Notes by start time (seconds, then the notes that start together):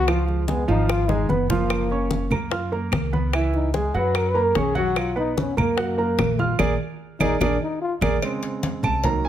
Already playing: C#2
0.07 F3 F4 F5, high bongo, high conga, claves
0.28 G#3, high bongo, high conga
0.48 G#3 B3 G#4 G#5, high bongo, high conga
0.68 G#1 F3 D#4 F4 F5, high bongo
0.89 F4, high bongo, high conga, claves
1.08 G#3 D#4 G#4 G#5, high bongo, high conga
1.29 F#1 B3 B4 B5, high conga
1.50 F3 A#3 F4 F5, low bongo, low conga
1.70 high bongo, high conga, claves
1.90 C#4 C#5 C#6, high conga
2.11 high bongo, high conga
2.30 F#2 A#3 A#4 A#5, low conga, claves
2.51 F4 F5 F6, high bongo, high conga
2.72 A#3 A#4 A#5, high conga
2.92 C#2, high bongo, low bongo, high conga, claves
3.13 B3 B4 B5, high conga
3.33 E3 E4 E5, high bongo, high conga, claves
3.54 D#4, high bongo, high conga
3.74 G#3 G#4 G#5, high bongo, high conga
3.94 F#2 F#3 F#4 B4 F#5, high bongo
4.15 A#4, high bongo, high conga, claves
4.30 B4
4.34 A#3 A#4 A#5, high conga
4.44 A#4
4.55 B1 C#4 G#4 C#5 C#6, high bongo, low bongo, high conga
4.75 F#3 F#4 F#5, high bongo, high conga
4.96 F4, high bongo, claves
5.16 B3 D#4 B4 B5, high conga
5.38 C#4, high bongo, high conga
5.57 F#2 A#3 A#4 A#5, low conga, claves
5.77 F#4 F#5 F#6, high bongo, high conga
5.98 A#3 A#4 A#5, high conga
6.18 A#1, high bongo, low bongo, high conga, claves
6.39 F4 F5 F6, high conga
6.59 A#1 G#4 A#4 D5, low bongo, high conga, claves
7.20 A#1 D#4 G#4 A#4 D5, low bongo, high conga, claves
7.40 A#1 D4 G#4 A#4 D5, low bongo, high conga, claves
7.61 D#4
7.81 F4
8.01 A#1 G#4 A#4 D5, low bongo, high conga, claves
8.22 C#3 G#3 C4, cowbell, high conga, claves
8.43 cowbell, high conga
8.63 cowbell, high conga
8.83 C2 A5, low conga, claves
9.04 D#3 F#3 A#3 A#5, cowbell, high conga, low conga
9.24 G#5, high conga